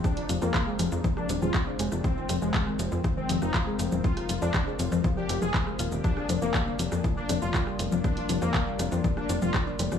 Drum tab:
HH |-xx---x---x---x-|--x---x---x---x-|-xx---x---x---x-|--x---x---x---x-|
SH |x-xxx-xxx-xxx-xx|x-xxx-xxx-xxx-xx|x-xxx-xxx-xxx-xx|x-xxx-xxx-xxx-xx|
CP |----x-------x---|----x-------x---|----x-------x---|----x-------x---|
SD |r--r--r--r--r--r|--r--r--r--r--r-|-r--r--r--r--r--|-r--r--r--r--r--|
CG |--O-----O--O----|--O-------O----O|--O-----O--O----|--O-------O----O|
BD |o---o---o---o---|o---o---o---o---|o---o---o---o---|o---o---o---o---|

HH |-xx---x---x---x-|
SH |x-xxx-xxx-xxx-xx|
CP |----x-------x---|
SD |r--r--r--r--r--r|
CG |--O-----O--O----|
BD |o---o---o---o---|